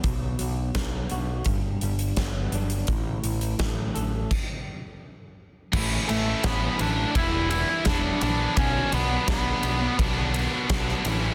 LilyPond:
<<
  \new Staff \with { instrumentName = "Lead electric guitar" } { \time 4/4 \key b \minor \tempo 4 = 84 r1 | r1 | r8 <a a'>8 <b b'>8 <d' d''>8 <e' e''>8 <e' e''>8 <d' d''>8 <d' d''>8 | <cis' cis''>8 <b b'>8 <b b'>4 r2 | }
  \new Staff \with { instrumentName = "Distorted electric guitar" } { \time 4/4 \key b \minor r1 | r1 | <a, e a cis' e'>8 <e a cis' e'>16 <a cis' e'>16 <a, e a cis' e'>8 <e a cis' e'>16 <a cis' e'>16 <e g b e'>16 <g b e'>8 <g b e'>16 <e g b e'>8 <e g b e'>16 <g b e'>16 | <b, fis b d'>8 <b, fis b d'>16 <fis b d'>16 <b, fis b d'>8 <b, fis b d'>16 <fis b d'>8 <fis b d'>8 <fis b d'>16 <b, fis b d'>8 <a, e a cis' e'>16 <a cis' e'>16 | }
  \new Staff \with { instrumentName = "Distorted electric guitar" } { \time 4/4 \key b \minor r1 | r1 | <a, e a cis' e'>8. <a cis' e'>16 <a, e a cis' e'>8 <e a cis' e'>8 <e g b e'>8 <e g b e'>8 <e g b e'>8 <e g b e'>16 <g b e'>16 | <b, fis b d'>8. <fis b d'>16 <b, fis b d'>8 <b, fis b d'>8 <b, fis b d'>8 <b, fis b d'>8 <b, fis b d'>8 <a, e a cis' e'>16 <a cis' e'>16 | }
  \new Staff \with { instrumentName = "Clean electric guitar" } { \clef bass \time 4/4 \key b \minor b,8 fis8 b8 fis'8 g,8 g8 b8 d'8 | a,8 e8 a8 a'8 r2 | r1 | r1 | }
  \new Staff \with { instrumentName = "Picked electric bass" } { \clef bass \time 4/4 \key b \minor b,,8 b,,8 b,,8 b,,8 g,,8 g,,8 g,,8 g,,8 | a,,8 a,,8 a,,8 a,,8 r2 | a,,8 a,,8 a,,8 a,,8 e,,4 e,,8 ais,,8 | b,,8 b,,8 b,,8 b,,8 b,,4 b,,8 a,,8 | }
  \new DrumStaff \with { instrumentName = "Drums" } \drummode { \time 4/4 <hh bd>8 hh8 <hh bd sn>8 hh8 <hh bd>8 hh16 hh16 <hh bd sn>8 hh16 hh16 | <hh bd>8 hh16 hh16 <hh bd sn>8 hh8 <cymc bd>4 r4 | <cymc bd>8 cymr8 <bd cymr sn>8 cymr8 <bd cymr>8 cymr8 <bd cymr sn>8 cymr8 | <bd cymr>8 cymr8 <bd cymr sn>8 cymr8 <bd cymr>8 cymr8 <bd cymr sn>16 sn16 cymr8 | }
>>